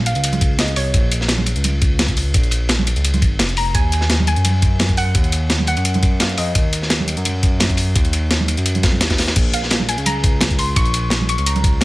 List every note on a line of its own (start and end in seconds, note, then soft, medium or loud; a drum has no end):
0.00 0.14 A#1 loud
0.06 0.61 F5 loud
0.06 closed hi-hat medium
0.06 ride medium
0.15 0.75 C#2 medium
0.15 closed hi-hat soft
0.15 ride soft
0.24 closed hi-hat loud
0.24 ride medium
0.33 closed hi-hat soft
0.33 high conga medium
0.41 kick loud
0.41 closed hi-hat medium
0.41 ride medium
0.59 0.77 D#5 medium
0.59 snare loud
0.59 closed hi-hat loud
0.59 ride medium
0.68 closed hi-hat soft
0.76 0.92 C2 loud
0.76 1.09 C#5 medium
0.76 open hi-hat medium
0.76 ride medium
0.94 1.54 A#1 loud
0.94 kick loud
0.94 closed hi-hat medium
0.94 ride medium
1.12 closed hi-hat medium
1.12 ride medium
1.21 snare soft
1.28 snare loud
1.28 closed hi-hat loud
1.28 ride loud
1.38 high conga medium
1.46 closed hi-hat medium
1.46 ride medium
1.56 2.33 C#2 medium
1.56 closed hi-hat soft
1.64 closed hi-hat loud
1.64 ride medium
1.64 high conga medium
1.82 kick loud
1.82 closed hi-hat medium
1.82 ride medium
1.99 snare loud
1.99 closed hi-hat medium
1.99 ride medium
1.99 high conga medium
2.08 kick medium
2.08 closed hi-hat soft
2.17 open hi-hat medium
2.17 ride medium
2.34 2.95 A#1 loud
2.34 kick loud
2.34 closed hi-hat medium
2.34 ride medium
2.44 closed hi-hat soft
2.51 closed hi-hat medium
2.51 ride medium
2.69 snare loud
2.69 closed hi-hat medium
2.69 ride medium
2.79 high conga loud
2.87 closed hi-hat medium
2.87 ride medium
2.96 3.23 C#2 medium
2.96 closed hi-hat soft
2.96 ride soft
3.04 closed hi-hat medium
3.04 ride medium
3.14 closed hi-hat soft
3.14 high conga loud
3.22 3.41 G#1 medium
3.22 kick loud
3.22 closed hi-hat medium
3.22 ride medium
3.39 3.73 F1 medium
3.39 snare loud
3.39 closed hi-hat medium
3.39 ride loud
3.49 closed hi-hat soft
3.57 3.74 A#5 loud
3.57 open hi-hat medium
3.57 ride medium
3.75 4.35 D#2 loud
3.75 4.07 G#5 loud
3.75 kick loud
3.75 closed hi-hat medium
3.75 ride medium
3.92 closed hi-hat medium
3.92 ride medium
4.01 snare soft
4.09 snare loud
4.09 closed hi-hat medium
4.09 ride medium
4.20 high conga medium
4.27 5.00 G#5 loud
4.27 closed hi-hat medium
4.27 ride medium
4.36 5.14 F#2 medium
4.36 closed hi-hat soft
4.45 closed hi-hat medium
4.45 ride medium
4.45 high conga medium
4.62 kick loud
4.62 closed hi-hat medium
4.62 ride medium
4.79 snare loud
4.79 closed hi-hat medium
4.79 ride medium
4.79 high conga medium
4.89 kick medium
4.89 closed hi-hat soft
4.97 5.67 F#5 loud
4.97 open hi-hat medium
4.97 ride medium
5.15 5.75 D#2 loud
5.15 kick loud
5.15 closed hi-hat medium
5.15 ride medium
5.24 closed hi-hat soft
5.32 closed hi-hat medium
5.32 ride medium
5.50 snare loud
5.50 closed hi-hat medium
5.50 ride medium
5.60 high conga medium
5.67 6.22 F#5 loud
5.67 closed hi-hat medium
5.67 ride medium
5.77 6.37 F#2 medium
5.77 closed hi-hat soft
5.77 ride soft
5.85 closed hi-hat medium
5.85 ride medium
5.94 closed hi-hat soft
5.94 high conga medium
6.03 kick loud
6.03 closed hi-hat medium
6.03 ride medium
6.20 6.29 F5 medium
6.20 snare loud
6.20 closed hi-hat medium
6.20 ride medium
6.29 closed hi-hat soft
6.37 6.54 F2 loud
6.37 6.71 D#5 medium
6.37 open hi-hat medium
6.37 ride medium
6.55 7.16 D#2 loud
6.55 kick loud
6.55 closed hi-hat medium
6.55 ride medium
6.73 closed hi-hat medium
6.73 ride medium
6.82 snare soft
6.90 snare loud
6.90 closed hi-hat medium
6.90 ride medium
7.00 high conga medium
7.08 closed hi-hat medium
7.08 ride medium
7.17 7.94 F#2 loud
7.17 closed hi-hat soft
7.25 closed hi-hat medium
7.25 ride medium
7.25 high conga medium
7.43 kick loud
7.43 closed hi-hat medium
7.43 ride medium
7.60 snare loud
7.60 closed hi-hat medium
7.60 ride medium
7.60 high conga medium
7.70 kick medium
7.70 closed hi-hat soft
7.77 open hi-hat medium
7.77 ride medium
7.96 8.56 D#2 loud
7.96 kick loud
7.96 closed hi-hat medium
7.96 ride medium
8.05 closed hi-hat soft
8.13 closed hi-hat medium
8.13 ride medium
8.31 snare loud
8.31 closed hi-hat medium
8.31 ride medium
8.40 high conga medium
8.48 closed hi-hat medium
8.48 ride medium
8.57 8.85 F#2 medium
8.57 closed hi-hat soft
8.57 ride soft
8.66 closed hi-hat loud
8.66 ride medium
8.75 closed hi-hat soft
8.75 high conga medium
8.83 9.03 F2 medium
8.83 kick loud
8.83 snare loud
8.83 closed hi-hat medium
8.83 ride medium
8.92 high conga medium
9.01 9.35 D#2 medium
9.01 snare loud
9.01 closed hi-hat medium
9.01 ride medium
9.10 kick medium
9.10 snare loud
9.10 closed hi-hat soft
9.10 ride medium
9.18 snare loud
9.18 open hi-hat medium
9.18 ride medium
9.28 snare loud
9.28 ride medium
9.36 9.96 A#1 loud
9.36 kick loud
9.36 closed hi-hat loud
9.36 crash medium
9.36 ride medium
9.53 9.90 F5 medium
9.53 closed hi-hat medium
9.53 ride medium
9.63 snare soft
9.70 snare loud
9.70 closed hi-hat medium
9.70 ride medium
9.80 high conga medium
9.89 9.97 G#5 loud
9.89 closed hi-hat medium
9.89 ride medium
9.98 10.75 C#2 loud
9.98 closed hi-hat soft
10.06 10.60 A#5 loud
10.06 closed hi-hat loud
10.06 ride medium
10.06 high conga medium
10.24 kick loud
10.24 closed hi-hat medium
10.24 ride medium
10.40 snare loud
10.40 closed hi-hat loud
10.40 ride medium
10.40 high conga medium
10.50 kick medium
10.50 closed hi-hat soft
10.58 10.67 C6 loud
10.58 open hi-hat medium
10.58 ride medium
10.76 11.37 A#1 loud
10.76 11.28 C#6 loud
10.76 kick loud
10.76 closed hi-hat medium
10.76 ride medium
10.86 closed hi-hat soft
10.94 closed hi-hat medium
10.94 ride medium
11.10 snare loud
11.10 closed hi-hat medium
11.10 ride medium
11.21 high conga medium
11.29 11.47 C#6 loud
11.29 closed hi-hat medium
11.29 ride medium
11.38 11.84 C#2 medium
11.38 closed hi-hat soft
11.38 ride soft
11.46 11.79 A#5 loud
11.46 closed hi-hat loud
11.46 ride medium
11.56 closed hi-hat soft
11.56 high conga medium
11.64 kick loud
11.64 closed hi-hat medium
11.64 ride medium
11.81 snare loud
11.81 ride medium